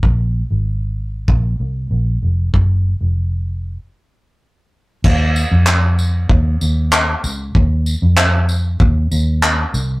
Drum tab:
CC |--------|--------|x-------|--------|
TB |--------|--------|-x-x-x-x|-x-x-x-x|
CP |--------|--------|--x---x-|--x---x-|
BD |o---o---|o-------|o---o---|o---o---|